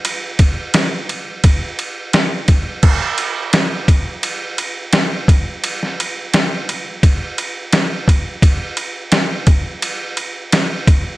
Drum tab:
CC |----------------|x---------------|----------------|----------------|
RD |x-x-x-x-x-x-x-x-|--x-x-x-x-x-x-x-|x-x-x-x-x-x-x-x-|x-x-x-x-x-x-x-x-|
SD |----o-------o---|----o-------o---|-o--o-------o---|----o-------o---|
BD |--o-----o-----o-|o-----o-------o-|--------o-----o-|o-----o-------o-|